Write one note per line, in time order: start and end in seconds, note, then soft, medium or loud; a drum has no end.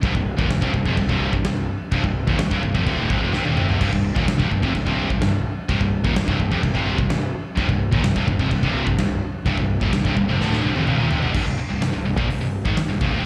0.02 0.14 C1 medium
0.02 0.13 C2 loud
0.02 0.13 G2 loud
0.02 kick loud
0.02 china medium
0.14 0.37 C1 medium
0.14 0.33 C2 medium
0.14 0.34 G2 medium
0.14 kick medium
0.37 0.50 D#1 medium
0.37 0.49 D#2 loud
0.37 0.49 A#2 loud
0.37 kick loud
0.49 0.61 C1 medium
0.49 0.60 C2 medium
0.49 0.61 G2 medium
0.49 snare loud
0.49 china medium
0.61 0.73 C1 loud
0.61 0.72 C2 medium
0.61 0.73 G2 loud
0.61 kick loud
0.73 0.85 C1 medium
0.73 0.85 C2 medium
0.73 0.86 G2 medium
0.73 kick medium
0.86 0.96 F1 loud
0.86 0.97 F2 loud
0.86 0.97 C3 loud
0.86 kick medium
0.97 1.08 C1 medium
0.97 1.08 C2 medium
0.97 1.08 G2 medium
0.97 kick loud
0.97 china medium
1.09 1.31 C1 loud
1.09 1.32 C2 medium
1.09 1.32 G2 loud
1.09 1.32 C3 loud
1.09 kick medium
1.33 1.43 C1 medium
1.33 1.44 C2 medium
1.33 1.44 G2 medium
1.33 kick loud
1.44 1.66 C1 medium
1.44 1.64 C2 medium
1.44 1.64 G2 medium
1.44 snare loud
1.44 china medium
1.91 2.03 C1 loud
1.91 2.02 C2 medium
1.91 2.03 G2 loud
1.91 kick loud
1.91 china medium
2.04 2.26 C1 medium
2.04 2.23 C2 medium
2.04 2.23 G2 medium
2.04 kick medium
2.27 2.39 D#1 loud
2.27 2.38 D#2 loud
2.27 2.39 A#2 loud
2.27 kick loud
2.39 2.50 C1 medium
2.39 2.49 C2 medium
2.39 2.50 G2 medium
2.39 snare loud
2.39 china medium
2.51 2.62 C1 loud
2.51 2.62 C2 medium
2.51 2.62 G2 loud
2.51 kick loud
2.63 2.74 C1 medium
2.63 2.74 C2 medium
2.63 2.75 G2 medium
2.63 kick medium
2.74 2.86 F1 medium
2.74 2.86 F2 medium
2.74 2.86 C3 loud
2.74 kick medium
2.86 3.08 D1 loud
2.86 3.09 D2 medium
2.86 3.09 A2 medium
2.86 3.10 D3 medium
2.86 kick loud
2.86 china medium
3.09 3.21 C1 medium
3.09 3.21 C2 medium
3.09 3.21 G2 loud
3.09 kick loud
3.21 3.33 F1 loud
3.21 3.33 F2 medium
3.21 3.33 C3 loud
3.33 3.45 C1 loud
3.33 3.44 C2 medium
3.33 3.45 G2 loud
3.33 snare medium
3.45 3.57 D#1 medium
3.45 3.56 D#2 medium
3.45 3.56 A#2 medium
3.45 high tom medium
3.56 3.69 F1 medium
3.56 3.68 F2 medium
3.56 3.68 C3 loud
3.56 mid tom loud
3.68 3.80 G1 medium
3.68 3.79 G2 loud
3.68 3.80 D3 medium
3.68 floor tom medium
3.80 3.92 C1 loud
3.80 3.91 C2 loud
3.80 3.91 G2 loud
3.80 kick loud
3.80 crash loud
3.80 china medium
3.92 4.15 C1 medium
3.92 4.11 C2 medium
3.92 4.12 G2 medium
3.92 kick medium
4.16 4.27 D#1 medium
4.16 4.27 D#2 medium
4.16 4.27 A#2 loud
4.16 kick loud
4.28 4.40 C1 medium
4.28 4.39 C2 medium
4.28 4.39 G2 medium
4.28 snare loud
4.28 china medium
4.40 4.51 C1 loud
4.40 4.51 C2 loud
4.40 4.51 G2 medium
4.40 kick loud
4.51 4.62 C1 medium
4.51 4.62 C2 medium
4.51 4.62 G2 medium
4.51 kick medium
4.62 4.74 F1 loud
4.62 4.74 F2 loud
4.62 4.74 C3 medium
4.62 kick medium
4.74 4.86 C1 medium
4.74 4.85 C2 medium
4.74 4.85 G2 medium
4.74 kick medium
4.74 china medium
4.86 5.09 C1 loud
4.86 5.09 C2 medium
4.86 5.09 G2 loud
4.86 5.10 C3 loud
4.86 kick medium
5.10 5.21 C1 medium
5.10 5.21 C2 medium
5.10 5.22 G2 medium
5.10 kick medium
5.22 5.44 C1 medium
5.22 5.41 C2 medium
5.22 5.41 G2 medium
5.22 snare loud
5.22 china medium
5.69 5.80 C1 loud
5.69 5.80 C2 loud
5.69 5.80 G2 loud
5.69 kick loud
5.69 china medium
5.80 6.03 C1 medium
5.80 6.00 C2 medium
5.80 6.00 G2 medium
5.80 kick medium
6.04 6.15 D#1 medium
6.04 6.15 D#2 loud
6.04 6.16 A#2 loud
6.04 kick loud
6.16 6.27 C1 medium
6.16 6.26 C2 medium
6.16 6.27 G2 medium
6.16 snare loud
6.16 china medium
6.28 6.39 C1 loud
6.28 6.38 C2 medium
6.28 6.38 G2 medium
6.28 kick loud
6.39 6.51 C1 medium
6.39 6.50 C2 medium
6.39 6.51 G2 medium
6.39 kick medium
6.51 6.63 F1 loud
6.51 6.62 F2 medium
6.51 6.62 C3 loud
6.51 kick medium
6.63 6.74 C1 medium
6.63 6.73 C2 medium
6.63 6.73 G2 medium
6.63 kick loud
6.63 china medium
6.74 6.97 C1 medium
6.74 6.96 C2 medium
6.74 6.97 G2 loud
6.74 6.98 C3 loud
6.74 kick medium
6.97 7.09 C1 medium
6.97 7.08 C2 medium
6.97 7.08 G2 medium
6.97 kick loud
7.09 7.32 C1 medium
7.09 7.29 C2 medium
7.09 7.29 G2 medium
7.09 snare loud
7.09 china medium
7.55 7.68 C1 loud
7.55 7.67 C2 medium
7.55 7.67 G2 loud
7.55 kick loud
7.55 china medium
7.68 7.91 C1 medium
7.68 7.87 C2 medium
7.68 7.87 G2 medium
7.68 kick loud
7.91 8.03 D#1 loud
7.91 8.03 D#2 loud
7.91 8.03 A#2 loud
7.91 kick loud
8.04 8.15 C1 medium
8.04 8.15 C2 medium
8.04 8.15 G2 medium
8.04 snare loud
8.04 china medium
8.16 8.27 C1 medium
8.16 8.26 C2 loud
8.16 8.27 G2 loud
8.16 kick loud
8.27 8.39 C1 medium
8.27 8.39 C2 medium
8.27 8.39 G2 medium
8.27 kick medium
8.39 8.50 F1 medium
8.39 8.51 F2 loud
8.39 8.51 C3 loud
8.39 kick medium
8.51 8.62 C1 medium
8.51 8.62 C2 medium
8.51 8.62 G2 medium
8.51 kick medium
8.51 china medium
8.63 8.85 C1 loud
8.63 8.86 C2 loud
8.63 8.86 G2 loud
8.63 8.87 C3 loud
8.63 kick medium
8.87 8.98 C1 medium
8.87 8.98 C2 medium
8.87 8.98 G2 medium
8.87 kick loud
8.99 9.21 C1 medium
8.99 9.18 C2 medium
8.99 9.18 G2 medium
8.99 snare loud
8.99 china medium
9.46 9.57 C1 loud
9.46 9.57 C2 loud
9.46 9.57 G2 loud
9.46 kick loud
9.46 china medium
9.58 9.80 C1 medium
9.58 9.77 C2 medium
9.58 9.77 G2 medium
9.58 kick medium
9.81 9.92 D#1 loud
9.81 9.93 D#2 medium
9.81 9.93 A#2 loud
9.81 kick loud
9.93 10.04 C1 medium
9.93 10.05 C2 medium
9.93 10.05 G2 medium
9.93 snare loud
9.93 china medium
10.05 10.16 C1 loud
10.05 10.17 C2 medium
10.05 10.17 G2 loud
10.05 kick loud
10.17 10.28 C1 medium
10.17 10.29 C2 medium
10.17 10.29 G2 medium
10.17 kick medium
10.29 10.39 F1 loud
10.29 10.40 F2 medium
10.29 10.40 C3 loud
10.40 10.62 D1 loud
10.40 10.63 D2 medium
10.40 10.63 A2 medium
10.40 10.64 D3 medium
10.40 snare medium
10.53 snare medium
10.63 10.74 C1 medium
10.63 10.74 C2 medium
10.63 10.75 G2 loud
10.75 10.85 F1 medium
10.75 10.86 F2 medium
10.75 10.86 C3 loud
10.75 high tom medium
10.86 10.98 C1 loud
10.86 10.98 C2 medium
10.86 10.98 G2 medium
10.86 mid tom medium
10.98 11.09 D#1 medium
10.98 11.10 D#2 medium
10.98 11.10 A#2 loud
11.10 11.21 F1 medium
11.10 11.21 F2 medium
11.10 11.22 C3 loud
11.10 floor tom loud
11.22 11.33 G1 medium
11.22 11.33 G2 medium
11.22 11.34 D3 medium
11.22 floor tom medium
11.34 11.46 C1 medium
11.34 11.45 C2 loud
11.34 11.45 G2 loud
11.34 kick loud
11.34 crash loud
11.46 11.58 C1 medium
11.46 11.57 C2 medium
11.46 11.58 G2 medium
11.58 muted picked electric bass stroke soft
11.58 muted distorted electric guitar stroke medium
11.70 11.82 C1 medium
11.70 11.80 C2 medium
11.70 11.80 G2 medium
11.81 11.93 C1 medium
11.81 11.92 C2 medium
11.81 11.92 G2 medium
11.81 snare loud
11.81 open hi-hat soft
11.93 12.05 C1 medium
11.93 12.04 C2 medium
11.93 12.04 G2 medium
12.05 12.17 C1 medium
12.05 12.17 C2 medium
12.05 12.17 G2 medium
12.17 12.29 A#1 medium
12.17 12.29 A#2 loud
12.17 12.29 F3 medium
12.17 kick loud
12.29 12.41 C1 medium
12.29 12.39 C2 medium
12.29 12.40 G2 medium
12.29 open hi-hat medium
12.41 12.64 C1 medium
12.41 12.60 C2 medium
12.41 12.60 G2 medium
12.65 12.76 G#1 medium
12.65 12.76 G#2 medium
12.65 12.77 D#3 medium
12.65 kick loud
12.77 muted distorted electric guitar stroke medium
12.77 muted picked electric bass stroke soft
12.77 snare loud
12.77 open hi-hat medium
12.89 13.00 C1 medium
12.89 12.99 C2 medium
12.89 13.00 G2 medium
13.01 13.12 C1 medium
13.01 13.11 C2 medium
13.01 13.12 G2 loud
13.01 kick loud
13.12 13.24 D1 medium
13.12 13.23 D2 medium
13.12 13.24 A2 medium